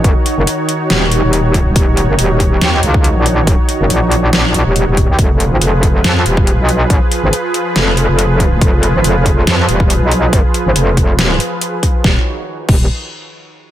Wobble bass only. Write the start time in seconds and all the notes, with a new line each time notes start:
Already playing: A#1
0.37 F#1
0.90 D#1
1.23 D#1
1.76 D#1
2.09 F#1
2.19 D#1
2.61 D#2
2.83 C#2
3.16 A#1
3.80 F#1
3.90 A#1
4.54 A#1
4.66 D#1
4.87 D#1
5.09 D#2
5.19 F1
5.51 G#1
5.61 F1
6.04 F2
6.26 D#1
6.59 B1
7.23 G#1
7.76 F1
8.09 F1
8.61 F1
8.94 G#1
9.04 F1
9.47 F2
9.69 D#1
10.01 B1
10.66 G#1
10.76 F1
12.04 D#1
12.69 D#1